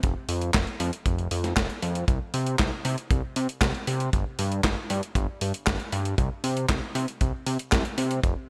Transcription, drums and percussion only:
0.03 kick loud
0.03 closed hi-hat medium
0.29 open hi-hat loud
0.41 closed hi-hat soft
0.54 kick loud
0.54 snare loud
0.54 clap loud
0.54 closed hi-hat medium
0.67 closed hi-hat soft
0.80 open hi-hat loud
0.93 closed hi-hat medium
1.06 kick loud
1.06 closed hi-hat medium
1.18 closed hi-hat soft
1.31 open hi-hat loud
1.44 snare soft
1.44 closed hi-hat soft
1.57 kick loud
1.57 snare loud
1.57 clap loud
1.57 closed hi-hat medium
1.70 closed hi-hat soft
1.82 open hi-hat loud
1.95 closed hi-hat soft
2.08 kick loud
2.08 closed hi-hat medium
2.34 open hi-hat loud
2.47 closed hi-hat soft
2.59 kick loud
2.59 snare loud
2.59 clap medium
2.59 closed hi-hat medium
2.85 open hi-hat loud
2.98 closed hi-hat soft
3.11 kick loud
3.11 closed hi-hat medium
3.36 open hi-hat loud
3.49 closed hi-hat soft
3.61 kick loud
3.61 snare loud
3.61 clap loud
3.61 closed hi-hat medium
3.75 closed hi-hat soft
3.87 open hi-hat loud
4.00 closed hi-hat soft
4.13 kick loud
4.13 closed hi-hat medium
4.39 open hi-hat loud
4.52 closed hi-hat medium
4.64 kick loud
4.64 snare loud
4.64 clap medium
4.64 closed hi-hat medium
4.90 open hi-hat loud
5.03 closed hi-hat medium
5.15 kick loud
5.15 closed hi-hat medium
5.41 open hi-hat loud
5.54 closed hi-hat medium
5.67 kick loud
5.67 snare loud
5.67 clap loud
5.67 closed hi-hat medium
5.80 closed hi-hat soft
5.92 open hi-hat loud
6.05 closed hi-hat medium
6.18 kick loud
6.18 closed hi-hat medium
6.44 open hi-hat loud
6.57 closed hi-hat medium
6.69 kick loud
6.69 snare loud
6.69 clap loud
6.69 closed hi-hat medium
6.95 open hi-hat loud
7.08 closed hi-hat medium
7.21 kick loud
7.21 closed hi-hat medium
7.46 open hi-hat loud
7.59 closed hi-hat medium
7.72 kick loud
7.72 snare loud
7.72 clap loud
7.72 closed hi-hat medium
7.85 closed hi-hat soft
7.98 open hi-hat loud
8.11 closed hi-hat medium
8.23 kick loud
8.23 closed hi-hat medium

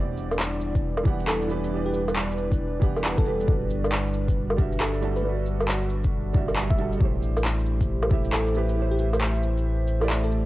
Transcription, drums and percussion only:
0.17 cabasa medium
0.31 low woodblock medium
0.31 shaker medium
0.39 clap loud
0.53 shaker soft
0.61 cabasa medium
0.75 kick medium
0.75 shaker medium
0.97 low woodblock medium
1.05 kick loud
1.05 cabasa medium
1.19 shaker medium
1.27 clap loud
1.42 shaker soft
1.49 cabasa medium
1.64 shaker medium
1.94 cabasa medium
2.08 low woodblock medium
2.08 shaker medium
2.16 clap loud
2.30 shaker soft
2.38 cabasa medium
2.52 kick medium
2.52 shaker medium
2.82 kick loud
2.82 cabasa medium
2.82 shaker soft
2.96 low woodblock soft
2.96 shaker medium
3.04 clap loud
3.18 kick loud
3.18 shaker soft
3.26 cabasa medium
3.40 shaker medium
3.48 kick loud
3.70 cabasa medium
3.84 low woodblock medium
3.84 shaker medium
3.92 clap loud
4.06 shaker soft
4.14 cabasa medium
4.28 kick medium
4.28 shaker medium
4.50 low woodblock medium
4.58 kick loud
4.58 cabasa medium
4.72 shaker medium
4.80 clap loud
4.94 shaker soft
5.02 cabasa medium
5.16 shaker medium
5.46 cabasa medium
5.60 low woodblock medium
5.60 shaker medium
5.68 clap loud
5.82 shaker soft
5.90 cabasa medium
6.04 kick medium
6.04 shaker medium
6.34 kick loud
6.34 cabasa medium
6.48 low woodblock soft
6.48 shaker medium
6.56 clap loud
6.70 kick loud
6.70 shaker soft
6.78 cabasa medium
6.92 shaker medium
7.01 kick loud
7.22 cabasa medium
7.37 low woodblock medium
7.37 shaker medium
7.44 clap loud
7.58 shaker soft
7.66 cabasa medium
7.81 kick medium
7.81 shaker medium
8.02 low woodblock medium
8.10 kick loud
8.10 cabasa medium
8.24 shaker medium
8.33 clap loud
8.47 shaker soft
8.55 cabasa medium
8.69 shaker medium
8.99 cabasa medium
9.13 low woodblock medium
9.13 shaker medium
9.21 clap loud
9.35 shaker soft
9.43 cabasa medium
9.57 shaker medium
9.87 cabasa medium
9.87 shaker soft
10.01 low woodblock medium
10.01 shaker medium
10.10 clap loud
10.23 shaker soft
10.32 cabasa medium

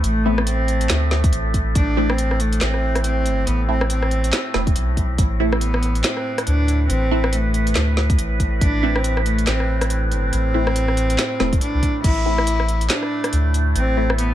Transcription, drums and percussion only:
0.04 closed hi-hat medium
0.38 cross-stick medium
0.47 closed hi-hat medium
0.68 closed hi-hat medium
0.81 closed hi-hat medium
0.90 snare loud
0.90 clap medium
0.90 closed hi-hat medium
1.11 snare medium
1.24 kick loud
1.24 closed hi-hat medium
1.33 closed hi-hat medium
1.54 kick medium
1.54 closed hi-hat medium
1.75 kick loud
1.75 closed hi-hat medium
2.10 cross-stick medium
2.18 closed hi-hat medium
2.31 cross-stick medium
2.40 closed hi-hat medium
2.53 closed hi-hat medium
2.61 snare loud
2.61 clap medium
2.61 closed hi-hat medium
2.74 cross-stick medium
2.95 cross-stick medium
2.95 closed hi-hat medium
3.04 closed hi-hat medium
3.26 closed hi-hat medium
3.47 closed hi-hat medium
3.81 cross-stick medium
3.90 closed hi-hat medium
4.03 cross-stick medium
4.11 closed hi-hat medium
4.24 closed hi-hat medium
4.33 snare loud
4.33 clap medium
4.33 closed hi-hat medium
4.54 cross-stick medium
4.54 snare medium
4.67 kick loud
4.67 closed hi-hat medium
4.76 closed hi-hat medium
4.97 kick medium
4.97 closed hi-hat medium
5.18 kick loud
5.18 closed hi-hat medium
5.53 cross-stick medium
5.61 closed hi-hat medium
5.74 cross-stick medium
5.83 closed hi-hat medium
5.95 closed hi-hat soft
6.04 snare loud
6.04 clap medium
6.04 closed hi-hat medium
6.17 cross-stick medium
6.38 cross-stick medium
6.38 closed hi-hat medium
6.47 closed hi-hat medium
6.68 closed hi-hat medium
6.90 closed hi-hat medium
7.24 cross-stick medium
7.33 closed hi-hat medium
7.54 closed hi-hat medium
7.67 closed hi-hat medium
7.76 snare loud
7.76 clap medium
7.76 closed hi-hat medium
7.97 snare medium
8.10 kick loud
8.10 closed hi-hat medium
8.19 closed hi-hat medium
8.40 kick medium
8.40 closed hi-hat medium
8.61 kick loud
8.61 closed hi-hat medium
8.96 cross-stick medium
9.04 closed hi-hat medium
9.17 cross-stick medium
9.26 closed hi-hat medium
9.39 closed hi-hat medium
9.47 snare loud
9.47 clap medium
9.47 closed hi-hat medium
9.60 cross-stick medium
9.81 cross-stick medium
9.81 closed hi-hat medium
9.90 closed hi-hat medium
10.12 closed hi-hat medium
10.33 closed hi-hat medium
10.67 cross-stick medium
10.76 closed hi-hat medium
10.88 cross-stick medium
10.97 closed hi-hat medium
11.10 closed hi-hat medium
11.19 snare loud
11.19 clap medium
11.19 closed hi-hat medium
11.40 cross-stick medium
11.40 snare medium
11.53 kick loud
11.53 closed hi-hat medium
11.61 closed hi-hat medium
11.83 kick medium
11.83 closed hi-hat medium
12.04 kick loud
12.04 closed hi-hat medium
12.04 crash medium
12.38 cross-stick medium
12.47 closed hi-hat medium
12.60 cross-stick medium
12.69 closed hi-hat medium
12.81 closed hi-hat medium
12.90 snare loud
12.90 clap medium
12.90 closed hi-hat medium
13.03 cross-stick medium
13.24 cross-stick medium
13.24 closed hi-hat medium
13.33 closed hi-hat medium
13.54 closed hi-hat medium
13.76 closed hi-hat medium
14.10 cross-stick medium
14.18 closed hi-hat medium

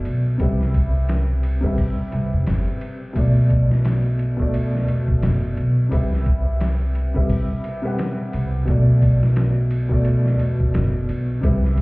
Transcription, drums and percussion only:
0.05 ride medium
0.40 kick loud
0.40 ride medium
0.61 snare soft
0.74 kick medium
0.74 ride medium
1.09 snare loud
1.09 ride medium
1.43 ride medium
1.64 kick medium
1.78 kick loud
1.78 open hi-hat medium
2.12 ride medium
2.47 snare loud
2.47 ride medium
2.81 ride medium
3.16 kick loud
3.16 ride medium
3.50 kick medium
3.50 ride medium
3.71 snare soft
3.85 snare loud
3.85 ride medium
4.19 ride medium
4.39 kick medium
4.54 ride medium
4.75 snare soft
4.88 ride medium
5.08 kick loud
5.23 snare loud
5.23 ride medium
5.57 ride medium
5.92 kick loud
5.92 ride medium
6.13 snare soft
6.26 kick medium
6.26 ride medium
6.61 snare loud
6.61 ride medium
6.95 ride medium
7.15 kick loud
7.29 kick loud
7.29 open hi-hat medium
7.64 ride medium
7.99 snare loud
7.99 ride medium
8.33 ride medium
8.68 kick loud
8.68 ride medium
9.02 kick medium
9.02 ride medium
9.23 snare soft
9.36 snare loud
9.36 ride medium
9.71 ride medium
9.91 kick loud
10.05 ride medium
10.26 snare soft
10.39 ride medium
10.60 kick loud
10.74 snare loud
10.74 ride medium
11.09 ride medium
11.43 kick loud
11.43 ride medium
11.64 snare soft
11.77 kick medium
11.77 ride medium

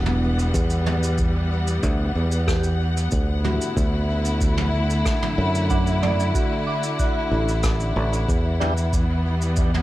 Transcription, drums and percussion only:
0.06 mid tom medium
0.39 shaker medium
0.54 kick loud
0.54 shaker medium
0.70 shaker soft
0.86 mid tom medium
1.03 shaker medium
1.18 kick loud
1.18 shaker medium
1.67 shaker medium
1.83 kick loud
1.83 shaker medium
2.32 shaker medium
2.48 kick loud
2.48 cross-stick medium
2.48 shaker medium
2.63 shaker medium
2.97 shaker medium
3.11 kick loud
3.11 shaker medium
3.44 mid tom medium
3.61 shaker medium
3.77 kick loud
3.77 shaker medium
4.25 shaker medium
4.41 kick loud
4.41 shaker medium
4.57 mid tom medium
4.90 shaker medium
5.05 kick loud
5.05 cross-stick medium
5.05 shaker medium
5.22 mid tom medium
5.55 shaker medium
5.70 kick loud
5.70 shaker medium
5.87 shaker soft
6.03 mid tom medium
6.20 shaker medium
6.35 kick loud
6.35 shaker medium
6.83 shaker medium
6.99 kick loud
6.99 shaker medium
7.48 shaker medium
7.63 kick loud
7.63 cross-stick loud
7.63 shaker medium
7.80 shaker soft
8.13 shaker medium
8.28 kick loud
8.28 shaker medium
8.61 mid tom medium
8.77 shaker medium
8.93 kick loud
8.93 shaker medium
9.42 shaker medium
9.56 kick loud
9.56 shaker medium
9.74 mid tom medium

